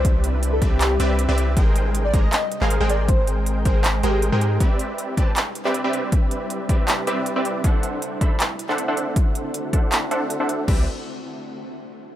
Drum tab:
CC |----------------|----------------|----------------|----------------|
HH |x-x-x-x-x-x-x-x-|x-x-x-x-x-x-x-x-|x-x-x-x-x-x-x-x-|x-x-x-x-x-x-x-x-|
CP |--------x-------|--------x--x----|--------x-------|--------x--x----|
BD |o-----o---------|o-----o---------|o-----o---------|o-----o---------|

CC |----------------|----------------|----------------|x---------------|
HH |x-x-x-x-x-x-x-x-|x-x-x-x-x-x-x-x-|x-x-x-x-x-x-x-x-|----------------|
CP |--------x-------|--------x--x----|--------x-------|----------------|
BD |o-----o---------|o-----o---------|o-----o---------|o---------------|